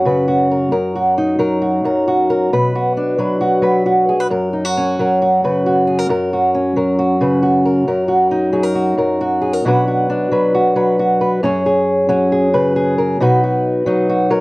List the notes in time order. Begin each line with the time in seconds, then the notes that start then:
Already playing: F#2 F#3 C#4 F#4
0.05 C#3 B4
0.28 F#4
0.51 A#4
0.72 F#2 A#4
0.96 F#4
1.18 D#4
1.39 F#3 A#4
1.62 F#4
1.85 F#2 A#4
2.08 F#4
2.30 A#4
2.53 B2 B4
2.75 F#4
2.97 D4
3.18 F#3 B4
3.41 F#4
3.62 F#3 B4
3.86 F#4
4.09 G#4
4.20 B4
4.30 F#2 A#4
4.53 D#4
4.65 F#4
4.77 C#4
4.99 F#3 A#4
5.22 F#4
5.44 C#3 B4
5.66 F#4
5.87 G#4
5.99 A#4
6.09 F#2 A#4
6.33 F#4
6.55 C#4
6.76 F#3 A#4
6.99 F#4
7.21 C#3 B4
7.42 F#4
7.65 A#4
7.87 F#2 A#4
8.08 F#4
8.31 D#4
8.53 F#3 G#4
8.63 A#4
8.75 F#4
8.98 F#2 A#4
9.21 F#4
9.42 G#4
9.53 A#4
9.65 B2 F#3 D4 F#4 B4
9.88 F#4
10.10 D4
10.31 F#3 B4
10.55 F#4
10.76 F#3 B4
10.99 F#4
11.21 B4
11.43 F#2 C#4 G#4 C#5
11.66 G#4
12.09 F#3 C#4
12.32 G#4
12.53 C#3 B4
12.76 G#4
12.98 A#4
13.20 B2 D#4 F#4 B4
13.44 F#4
13.86 F#3 D#4
14.10 F#4
14.30 F#3 A#4